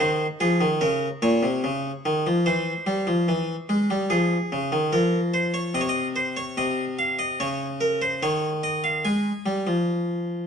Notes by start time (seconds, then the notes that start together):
0.00 D#3 C5
0.40 F3 G#4
0.61 D#3
0.81 C#3 A#4
1.22 A#2 C#5
1.43 C3
1.64 C#3
2.06 D#3
2.27 F3
2.46 E3 C5
2.87 G3
3.07 F3
3.28 E3
3.69 G#3
3.90 G3
4.10 F3 G#4
4.52 C#3
4.72 D#3
4.93 F3 A#4
5.34 C5
5.54 C#5
5.74 C3 D#5
5.81 C#5
5.89 D#5
6.16 C5
6.37 C#5
6.57 C3 D#5
6.99 F5
7.19 D#5
7.40 C#3 C#5
7.81 A#4
8.02 C5
8.23 D#3 C#5
8.63 D#5
8.84 F5
9.05 G#3 G#5
9.46 G3
9.67 F3